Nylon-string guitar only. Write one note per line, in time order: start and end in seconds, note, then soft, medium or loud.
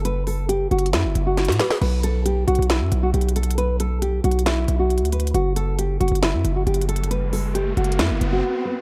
0.05 0.25 B4 medium
0.27 0.47 A4 medium
0.49 0.69 G4 medium
0.71 0.91 F#4 medium
0.93 1.24 E4 medium
1.27 1.58 F#4 medium
1.59 1.79 B4 medium
1.81 2.02 B4 medium
2.04 2.24 A4 medium
2.25 2.46 G4 medium
2.47 2.68 F#4 medium
2.70 3.01 E4 medium
3.03 3.13 F#4 medium
3.14 3.34 G4 medium
3.36 3.56 A4 medium
3.58 3.78 B4 medium
3.80 4.00 A4 medium
4.02 4.22 G4 medium
4.24 4.44 F#4 medium
4.46 4.77 E4 medium
4.79 5.10 F#4 medium
5.12 5.32 B4 medium
5.34 5.54 F#4 medium
5.56 5.76 A4 medium
5.79 5.99 G4 medium
6.00 6.20 F#4 medium
6.23 6.54 E4 medium
6.56 6.66 F#4 medium
6.67 6.87 G4 medium
6.89 7.09 A4 medium
7.11 7.31 B4 medium
7.33 7.53 A4 medium
7.55 7.75 G4 medium
7.77 7.97 F#4 medium
7.99 8.30 E4 medium
8.32 8.63 F#4 medium
8.65 8.81 B4 medium